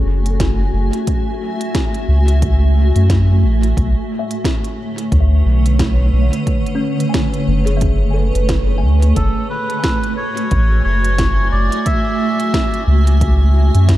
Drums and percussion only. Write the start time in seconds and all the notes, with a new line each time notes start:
0.26 closed hi-hat
0.40 kick, snare, closed hi-hat
0.93 closed hi-hat
1.07 kick, closed hi-hat
1.61 closed hi-hat
1.75 kick, snare, closed hi-hat
1.94 closed hi-hat
2.28 closed hi-hat
2.42 kick, closed hi-hat
2.96 closed hi-hat
3.10 kick, snare, closed hi-hat
3.63 closed hi-hat
3.77 kick, closed hi-hat
4.31 closed hi-hat
4.45 kick, snare, closed hi-hat
4.64 closed hi-hat
4.98 closed hi-hat
5.12 kick, closed hi-hat
5.66 closed hi-hat
5.79 kick, snare, closed hi-hat
6.33 closed hi-hat
6.47 kick, closed hi-hat
6.66 closed hi-hat
7.00 closed hi-hat
7.14 kick, snare, closed hi-hat
7.34 closed hi-hat
7.67 closed hi-hat
7.81 kick, closed hi-hat
8.35 closed hi-hat
8.49 kick, snare, closed hi-hat
9.02 closed hi-hat
9.16 kick, closed hi-hat
9.70 closed hi-hat
9.84 kick, snare, closed hi-hat
10.04 closed hi-hat
10.37 closed hi-hat
10.51 kick, closed hi-hat
11.05 closed hi-hat
11.18 kick, snare, closed hi-hat
11.72 closed hi-hat
11.86 kick, closed hi-hat
12.40 closed hi-hat
12.54 kick, snare, closed hi-hat
12.74 closed hi-hat
13.07 closed hi-hat
13.21 kick, closed hi-hat
13.75 closed hi-hat
13.89 kick, snare, closed hi-hat